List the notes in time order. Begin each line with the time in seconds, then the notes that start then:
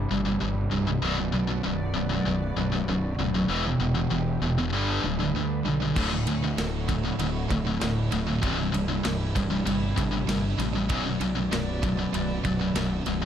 Already playing: C3 G3 D4 E4
0.11 G1 C2 G2
0.25 C2 G2
0.41 G1 C2 G2
0.71 C1 C2 G2
0.87 C2 G2
1.02 B0 B1 F#2 B2 B3 F#4 B4 D5
1.17 B1 F#2
1.32 B1 F#2
1.47 B1 F#2
1.63 B0 B1 F#2
1.94 B1 F#2
2.09 B1 F#2
2.25 B0 B1 F#2
2.56 B0 B1 F#2
2.72 B1 F#2
2.88 B0 B1 F#2
3.18 D1 B1 F#2
3.34 B1 F#2
3.49 E1 E2 B2 E3 B3 G4
3.64 E2 B2
3.80 E1 E2 B2
3.95 E2 B2
4.11 E1 E2 B2
4.42 E1 E2 B2
4.58 E2 B2
4.73 G1 G2 D3 G3 D4 A4 B4
5.04 D1 G2 D3
5.20 G2 D3
5.34 D2 G2 D3
5.65 B1 G2 D3
5.82 G2 D3
5.95 D1 D2 A2 D3 A3 E4 F#4, kick, crash
6.12 D2 A2
6.26 D2 A2, ride
6.44 D2 A2
6.58 D1 D2 A2, snare, ride
6.89 D2 A2, kick, ride
7.05 D2 A2
7.19 D1 D2 A2, ride
7.50 D1 D2 A2, kick, ride
7.67 D2 A2
7.81 D1 D2 A2, snare, ride
8.12 D1 D2 A2, ride
8.27 D2 A2
8.42 C1 C2 G2 C3 G3 D4 E4, kick, ride
8.58 C2 G2
8.72 C1 C2 G2, ride
8.88 C2 G2
9.03 C1 C2 G2, snare, ride
9.35 C1 C2 G2, kick, ride
9.50 C2 G2
9.66 G1 C2 G2, ride
9.96 G1 C2 G2, kick, ride
10.11 C2 G2
10.28 G1 C2 G2, snare, ride
10.59 A1 C2 G2, ride
10.75 C2 G2
10.89 B0 B1 F#2 B2 B3 F#4 B4 D5, kick, ride
11.06 B1 F#2
11.21 B1 F#2, ride
11.35 B1 F#2
11.52 B0 B1 F#2, snare, ride
11.83 B1 F#2, kick, ride
11.99 B1 F#2
12.13 B0 B1 F#2, ride
12.45 B0 B1 F#2, kick, ride
12.61 B1 F#2
12.74 B0 B1 F#2, snare, ride
13.06 B0 B1 F#2, ride
13.22 B1 F#2